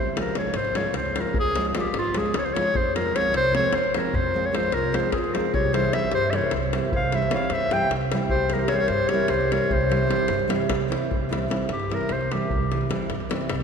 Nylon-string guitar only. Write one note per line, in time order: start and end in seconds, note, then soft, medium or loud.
0.16 0.32 F3 medium
0.16 0.32 G#3 soft
0.16 0.33 C#4 soft
0.16 0.33 F4 medium
0.35 0.51 F3 medium
0.35 0.51 G#3 soft
0.35 0.51 C#4 medium
0.35 0.51 F4 medium
0.75 0.91 F3 medium
0.75 0.92 G#3 medium
0.75 0.92 C#4 medium
0.75 0.93 F4 medium
1.15 1.32 F3 medium
1.15 1.32 G#3 medium
1.15 1.32 C#4 medium
1.15 1.33 F4 medium
1.56 1.72 F3 medium
1.56 1.72 G#3 medium
1.56 1.72 C#4 medium
1.56 1.72 F4 medium
1.75 1.90 F3 medium
1.75 1.90 G#3 medium
1.75 1.90 C#4 medium
1.75 1.91 F4 medium
2.14 2.30 F3 medium
2.14 2.31 G#3 medium
2.14 2.31 C#4 medium
2.14 2.31 F4 medium
2.55 2.71 F3 medium
2.55 2.72 G#3 medium
2.55 2.72 C#4 medium
2.55 2.72 F4 medium
2.95 3.11 F3 medium
2.95 3.11 G#3 medium
2.95 3.11 C4 medium
2.95 3.12 F4 medium
3.14 3.30 F3 medium
3.14 3.30 G#3 medium
3.14 3.30 C4 medium
3.14 3.31 F4 medium
3.52 3.69 F3 medium
3.52 3.70 G#3 medium
3.52 3.70 C4 medium
3.52 3.70 F4 medium
3.95 4.11 F3 medium
3.95 4.12 G#3 medium
3.95 4.11 C4 medium
3.95 4.12 F4 medium
4.34 4.50 F3 medium
4.34 4.50 G#3 medium
4.34 4.51 C4 medium
4.34 4.51 F4 medium
4.52 4.68 F3 medium
4.52 4.68 G#3 medium
4.52 4.69 C4 soft
4.52 4.69 F4 medium
4.92 5.09 F3 medium
4.92 5.09 G#3 medium
4.92 5.10 C4 medium
4.92 5.10 F4 medium
5.34 5.50 F3 medium
5.34 5.51 G#3 medium
5.34 5.50 C4 medium
5.34 5.51 F4 medium
5.73 5.89 E3 medium
5.73 5.89 G3 medium
5.73 5.90 C4 soft
5.73 5.90 E4 medium
5.93 6.08 E3 medium
5.93 6.09 G3 soft
5.93 6.09 C4 medium
5.93 6.09 E4 medium
6.33 6.49 E3 medium
6.33 6.49 G3 medium
6.33 6.50 C4 medium
6.33 6.50 E4 medium
6.74 6.90 E3 medium
6.74 6.90 G3 medium
6.74 6.90 C4 medium
6.74 6.90 E4 medium
7.12 7.28 E3 medium
7.12 7.28 G3 soft
7.12 7.29 C4 soft
7.12 7.29 E4 medium
7.30 7.47 E3 medium
7.30 7.47 G3 medium
7.30 7.48 C4 medium
7.30 7.48 E4 medium
7.71 7.88 E3 medium
7.71 7.88 G3 medium
7.71 7.88 C4 medium
7.71 7.89 E4 medium
8.13 8.29 E3 medium
8.13 8.29 G3 medium
8.13 8.29 C4 medium
8.13 8.30 E4 medium
8.53 8.69 E3 medium
8.53 8.69 G3 soft
8.53 8.69 C4 medium
8.53 8.69 E4 medium
8.71 8.87 E3 medium
8.71 8.87 G3 medium
8.71 8.87 C4 medium
8.71 8.87 E4 medium
9.12 9.28 E3 medium
9.12 9.28 G3 medium
9.12 9.29 C4 medium
9.12 9.29 E4 medium
9.51 9.68 E3 medium
9.51 9.68 G3 medium
9.51 9.68 C4 medium
9.51 9.69 E4 medium
9.89 10.06 E3 medium
9.89 10.07 G3 medium
9.89 10.08 C4 soft
9.89 10.07 E4 medium
10.07 10.25 E3 medium
10.07 10.25 G3 soft
10.07 10.26 C4 medium
10.07 10.26 E4 medium
10.48 10.66 E3 medium
10.48 10.66 G3 medium
10.48 10.66 C4 medium
10.48 10.66 E4 medium
10.88 11.06 E3 medium
10.88 11.07 G3 medium
10.88 11.07 C4 medium
10.88 11.07 E4 medium
11.29 11.46 E3 medium
11.29 11.47 G3 medium
11.29 11.47 C4 medium
11.29 11.48 E4 medium
11.48 11.65 E3 medium
11.48 11.66 G3 medium
11.48 11.66 C4 medium
11.48 11.66 E4 medium
11.90 12.07 E3 medium
11.90 12.07 G3 medium
11.90 12.07 C4 soft
11.90 12.08 E4 medium
12.31 12.48 E3 medium
12.31 12.49 G3 soft
12.31 12.49 C4 medium
12.31 12.49 E4 medium
12.72 12.88 E3 medium
12.72 12.88 G3 soft
12.72 12.88 C4 medium
12.72 12.89 E4 medium
12.89 13.06 E3 medium
12.89 13.06 G3 medium
12.89 13.06 C4 medium
12.89 13.06 E4 medium
13.30 13.47 E3 medium
13.30 13.47 G3 medium
13.30 13.47 C4 medium
13.30 13.48 E4 medium